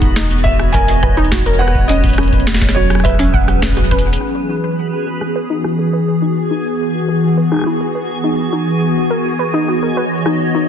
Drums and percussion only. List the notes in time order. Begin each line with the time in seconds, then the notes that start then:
0.02 kick, closed hi-hat
0.16 snare
0.31 closed hi-hat
0.45 kick
0.59 cross-stick
0.74 kick, closed hi-hat
0.88 closed hi-hat
1.03 kick, cross-stick
1.17 closed hi-hat
1.24 closed hi-hat
1.32 kick, snare, closed hi-hat
1.39 closed hi-hat
1.46 closed hi-hat
1.68 cross-stick
1.75 kick
1.89 closed hi-hat
2.04 kick, closed hi-hat
2.08 closed hi-hat
2.13 closed hi-hat
2.18 cross-stick, closed hi-hat
2.23 closed hi-hat
2.28 closed hi-hat
2.33 kick, closed hi-hat
2.40 closed hi-hat
2.47 snare, closed hi-hat
2.54 snare, closed hi-hat
2.61 kick, snare, closed hi-hat
2.69 snare
2.90 cross-stick, closed hi-hat
2.95 cross-stick
3.00 cross-stick
3.05 kick, cross-stick, closed hi-hat
3.10 cross-stick
3.14 cross-stick
3.19 closed hi-hat
3.34 kick
3.48 cross-stick, closed hi-hat
3.62 kick, snare, closed hi-hat
3.72 kick
3.77 cross-stick, closed hi-hat
3.82 kick
3.91 kick, closed hi-hat
3.99 closed hi-hat
4.13 closed hi-hat
4.20 closed hi-hat
5.21 cross-stick
5.64 cross-stick
7.52 cross-stick
7.54 cross-stick
7.56 cross-stick
7.59 cross-stick
7.61 cross-stick
7.64 cross-stick
10.26 cross-stick